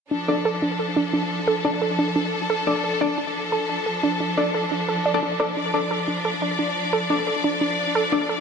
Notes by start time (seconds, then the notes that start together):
0.11 F3 D4 A4
0.28 D4 A4 D5
0.45 A4
0.62 D4
0.79 A4
0.96 D4
1.13 D4
1.48 A4
1.65 D4 A4 D5
1.82 A4
1.99 D4
2.16 D4
2.50 A4
2.67 D4 A4 D5
2.84 A4
3.01 D4 A4 D5
3.18 D4
3.52 A4
3.69 D4
3.86 A4
4.03 D4
4.20 D4
4.37 D4 A4 D5
4.54 A4
4.71 D4
4.89 A4
5.06 D5
5.14 D4 A4 D5
5.23 D4
5.40 D4 A4 D5
5.57 D4 D5
5.74 D4 A4 D5
5.91 A4
6.08 D4
6.25 A4
6.42 D4
6.59 D4
6.93 A4
7.10 D4 A4 D5
7.27 A4
7.44 D4
7.61 D4
7.95 A4
8.12 D4 A4 D5
8.29 A4